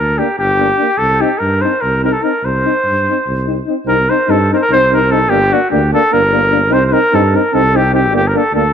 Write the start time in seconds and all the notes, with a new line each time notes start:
Already playing: D2 A#4
0.18 A#3 D4 G4
0.38 G1 G4
0.58 A#3 D4
0.77 A#3 D4
0.98 C2 A4
1.20 C4 D#4 G4
1.38 G2 A#4
1.61 C4 D#4 C5
1.81 C2 A#4
2.04 C4 D#4 A#4
2.12 A4
2.22 C4 D#4 A#4
2.43 C2 C5
2.64 C4 D#4
2.85 G2
3.09 C4 D#4
3.26 C2
3.46 C4 D#4
3.66 C4 D#4
3.85 C2 C4 D#4 A#4
4.09 C4 D#4 C5
4.28 G2 C4 D#4 A4
4.52 C4 D#4 A#4 C5
4.62 A#4
4.69 C2 C4 D#4 C5
4.92 C4 D#4 A#4
5.10 C4 D#4 A4
5.29 G1 A#3 D4 G4
5.52 A#3 D4 F#4
5.71 D2 A#3 D4 G4
5.93 A#3 D4 A4
6.12 G1 A#3 D4 A#4
6.32 A#3 D4
6.51 A#3 D4
6.69 C2 C4 D#4
6.73 C5
6.86 C5
6.91 C4 D#4 A#4
7.12 G2 C4 D#4 A4
7.34 C4 D#4 A#4
7.53 C2 C4 D#4 A4
7.74 C4 D#4 G4
7.92 C4 D#4 G4
8.12 G1 A#3 D4
8.16 G4
8.28 A#4
8.34 A#3 D4 A4
8.52 D2 A#3 D4 A4